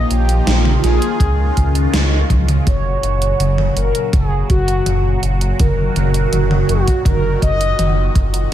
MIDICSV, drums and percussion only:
0, 0, Header, 1, 2, 480
1, 0, Start_track
1, 0, Tempo, 731707
1, 1750, Time_signature, 4, 2, 24, 8
1, 5599, End_track
2, 0, Start_track
2, 0, Title_t, "Drums"
2, 69, Note_on_c, 9, 42, 66
2, 135, Note_off_c, 9, 42, 0
2, 189, Note_on_c, 9, 42, 65
2, 255, Note_off_c, 9, 42, 0
2, 309, Note_on_c, 9, 38, 114
2, 309, Note_on_c, 9, 42, 92
2, 375, Note_off_c, 9, 38, 0
2, 375, Note_off_c, 9, 42, 0
2, 429, Note_on_c, 9, 47, 90
2, 495, Note_off_c, 9, 47, 0
2, 549, Note_on_c, 9, 38, 35
2, 549, Note_on_c, 9, 42, 65
2, 615, Note_off_c, 9, 38, 0
2, 615, Note_off_c, 9, 42, 0
2, 669, Note_on_c, 9, 42, 66
2, 735, Note_off_c, 9, 42, 0
2, 787, Note_on_c, 9, 36, 117
2, 789, Note_on_c, 9, 42, 95
2, 853, Note_off_c, 9, 36, 0
2, 855, Note_off_c, 9, 42, 0
2, 1030, Note_on_c, 9, 42, 67
2, 1031, Note_on_c, 9, 36, 63
2, 1096, Note_off_c, 9, 36, 0
2, 1096, Note_off_c, 9, 42, 0
2, 1149, Note_on_c, 9, 42, 66
2, 1215, Note_off_c, 9, 42, 0
2, 1270, Note_on_c, 9, 38, 115
2, 1270, Note_on_c, 9, 42, 94
2, 1335, Note_off_c, 9, 38, 0
2, 1335, Note_off_c, 9, 42, 0
2, 1509, Note_on_c, 9, 36, 106
2, 1510, Note_on_c, 9, 42, 69
2, 1510, Note_on_c, 9, 48, 63
2, 1574, Note_off_c, 9, 36, 0
2, 1576, Note_off_c, 9, 42, 0
2, 1576, Note_off_c, 9, 48, 0
2, 1630, Note_on_c, 9, 42, 65
2, 1630, Note_on_c, 9, 47, 73
2, 1696, Note_off_c, 9, 42, 0
2, 1696, Note_off_c, 9, 47, 0
2, 1750, Note_on_c, 9, 36, 113
2, 1750, Note_on_c, 9, 42, 99
2, 1750, Note_on_c, 9, 47, 50
2, 1816, Note_off_c, 9, 36, 0
2, 1816, Note_off_c, 9, 42, 0
2, 1816, Note_off_c, 9, 47, 0
2, 1990, Note_on_c, 9, 42, 69
2, 2056, Note_off_c, 9, 42, 0
2, 2111, Note_on_c, 9, 42, 69
2, 2176, Note_off_c, 9, 42, 0
2, 2231, Note_on_c, 9, 42, 95
2, 2231, Note_on_c, 9, 47, 49
2, 2296, Note_off_c, 9, 42, 0
2, 2296, Note_off_c, 9, 47, 0
2, 2351, Note_on_c, 9, 47, 87
2, 2416, Note_off_c, 9, 47, 0
2, 2470, Note_on_c, 9, 42, 69
2, 2536, Note_off_c, 9, 42, 0
2, 2590, Note_on_c, 9, 42, 66
2, 2656, Note_off_c, 9, 42, 0
2, 2710, Note_on_c, 9, 36, 126
2, 2710, Note_on_c, 9, 42, 97
2, 2710, Note_on_c, 9, 47, 54
2, 2776, Note_off_c, 9, 36, 0
2, 2776, Note_off_c, 9, 42, 0
2, 2776, Note_off_c, 9, 47, 0
2, 2950, Note_on_c, 9, 42, 67
2, 2951, Note_on_c, 9, 36, 111
2, 3016, Note_off_c, 9, 36, 0
2, 3016, Note_off_c, 9, 42, 0
2, 3070, Note_on_c, 9, 42, 69
2, 3136, Note_off_c, 9, 42, 0
2, 3190, Note_on_c, 9, 42, 98
2, 3190, Note_on_c, 9, 47, 56
2, 3256, Note_off_c, 9, 42, 0
2, 3256, Note_off_c, 9, 47, 0
2, 3430, Note_on_c, 9, 42, 67
2, 3496, Note_off_c, 9, 42, 0
2, 3550, Note_on_c, 9, 42, 69
2, 3616, Note_off_c, 9, 42, 0
2, 3670, Note_on_c, 9, 42, 97
2, 3670, Note_on_c, 9, 47, 60
2, 3671, Note_on_c, 9, 36, 122
2, 3736, Note_off_c, 9, 42, 0
2, 3736, Note_off_c, 9, 47, 0
2, 3737, Note_off_c, 9, 36, 0
2, 3910, Note_on_c, 9, 42, 70
2, 3910, Note_on_c, 9, 47, 60
2, 3976, Note_off_c, 9, 42, 0
2, 3976, Note_off_c, 9, 47, 0
2, 4030, Note_on_c, 9, 42, 67
2, 4096, Note_off_c, 9, 42, 0
2, 4150, Note_on_c, 9, 42, 96
2, 4150, Note_on_c, 9, 47, 61
2, 4216, Note_off_c, 9, 42, 0
2, 4216, Note_off_c, 9, 47, 0
2, 4270, Note_on_c, 9, 47, 86
2, 4335, Note_off_c, 9, 47, 0
2, 4390, Note_on_c, 9, 42, 69
2, 4455, Note_off_c, 9, 42, 0
2, 4510, Note_on_c, 9, 42, 66
2, 4511, Note_on_c, 9, 36, 68
2, 4576, Note_off_c, 9, 42, 0
2, 4577, Note_off_c, 9, 36, 0
2, 4627, Note_on_c, 9, 36, 117
2, 4630, Note_on_c, 9, 42, 97
2, 4630, Note_on_c, 9, 47, 68
2, 4693, Note_off_c, 9, 36, 0
2, 4695, Note_off_c, 9, 42, 0
2, 4695, Note_off_c, 9, 47, 0
2, 4868, Note_on_c, 9, 36, 68
2, 4870, Note_on_c, 9, 42, 70
2, 4934, Note_off_c, 9, 36, 0
2, 4935, Note_off_c, 9, 42, 0
2, 4990, Note_on_c, 9, 42, 69
2, 5056, Note_off_c, 9, 42, 0
2, 5110, Note_on_c, 9, 42, 99
2, 5110, Note_on_c, 9, 47, 70
2, 5175, Note_off_c, 9, 42, 0
2, 5175, Note_off_c, 9, 47, 0
2, 5349, Note_on_c, 9, 36, 106
2, 5349, Note_on_c, 9, 42, 71
2, 5414, Note_off_c, 9, 36, 0
2, 5415, Note_off_c, 9, 42, 0
2, 5469, Note_on_c, 9, 42, 71
2, 5535, Note_off_c, 9, 42, 0
2, 5599, End_track
0, 0, End_of_file